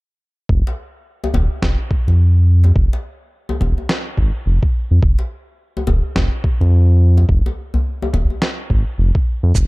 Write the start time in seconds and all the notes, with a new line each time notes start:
0.49 F1, kick
0.67 djembe slap
1.24 djembe tone
1.34 D#1, djembe slap, djembe bass
1.62 F1, kick, snare
1.91 kick, djembe tone
2.07 F2, djembe slap
2.64 djembe slap, djembe tone
2.76 F1, kick
2.93 djembe slap
3.49 djembe tone
3.61 D#1, kick, djembe slap, djembe bass
3.78 djembe tone
3.89 snare
4.17 G#1, kick
4.46 F1
4.63 kick
4.91 F2
5.02 F1, kick
5.19 djembe slap
5.77 djembe tone
5.87 D#1, djembe slap, djembe bass
6.16 F1, kick, snare
6.44 kick, djembe tone
6.61 F2, djembe slap
7.17 djembe slap, djembe tone
7.29 F1, kick
7.46 djembe slap, djembe tone
7.74 djembe bass
8.02 djembe tone
8.13 D#1, kick, djembe slap, djembe bass
8.30 djembe tone
8.42 snare
8.70 G#1, kick
8.98 F1
9.15 kick
9.43 F2
9.55 F1, kick, cabasa